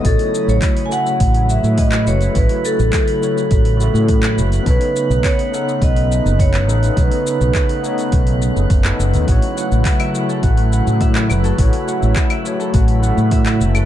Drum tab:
HH |oo--oo--oo--oo-o|oo--oo--oo--oo-o|oo--oo--oo--oo-o|oo--oo-ooo--oo-o|
SH |x-xxx-xxx-xxx-xx|x-xxx-xxx-xxx-xx|x-xxx-xxx-xxx-xx|x-xxx-xxx-xxx-xx|
CL |----------------|----------------|----------------|----------------|
CP |----x--------x--|----x--------x--|----x--------x--|----x--------x--|
BD |o---o---o---o---|o---o---o---o---|o---o---o---o---|o---o---o---o---|

HH |oo--oo--oo--oo-o|oo--oo--oo--oo-o|
SH |x-xxx-xxx-xxx-xx|x-xxx-xxx-xxx-xx|
CL |-----x--------x-|-----x---------x|
CP |----x--------x--|----x--------x--|
BD |o---o---o---o---|o---o---o---o---|